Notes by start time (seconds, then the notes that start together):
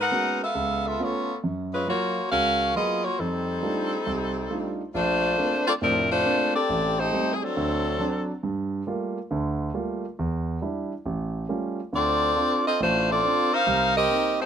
0.00 D#4 A#4 B4 F#5
0.11 G#3 A#3 B3 C#4 F#4
0.44 B3 A4 E5 F5
0.55 C#2
0.87 B3 F4 A4 E5
0.99 A3 B3 C#4 F4 A4 C#5
1.44 F#2
1.73 G#3 C#4 F4 B4
1.87 F#3 A#3 F4 F#4 C#5
2.32 C#2 C#4 F#4 A#4 F5
2.75 F#3 A#3 B3 F4 G#4 D#5
3.05 A#3 F4 F#4 C#5
3.19 F2 G3 C4 D#4 A4
3.62 G3 A3 D4 D#4 F4
4.07 C2
4.50 G3 A3 D4 D#4 F4
4.94 A#1 A3 D4 F4 C5
5.38 A3 A#3 C4 D4
5.67 C4 F4 A4 D5
5.82 F1 A2 F3 C4 D4 A#4
6.11 A3 D4 F4 C5
6.25 A3 A#3 C4 D4
6.55 C4 G4 A4 D5
6.69 A1
6.99 A3 D#4 G4 C5
7.12 G3 A3 C4
7.34 G#4
7.43 F#3 C4 D4 A4
7.57 D2
7.99 F#3 C4 D4
8.43 G2
8.87 G3 A3 A#3 F4
9.31 D2 D3
9.74 G3 A3 A#3 F4
10.19 E2
10.61 G3 D4 E4
11.06 A1
11.49 G3 A3 C#4 F4
11.93 D2 C4 F4 A4 D5
12.37 C4 D4 F4
12.67 C4 F4 A4 D#5
12.80 A1 A2 A3 D4 F4 C5
13.10 C4 F4 A4 D5
13.23 C4 D4 F4
13.53 D#4 A#4 C5 F5
13.67 C2 C3
13.97 C4 G4 A#4 D#5
14.11 A#3 C4 D#4
14.40 A3 D#4 G4 C5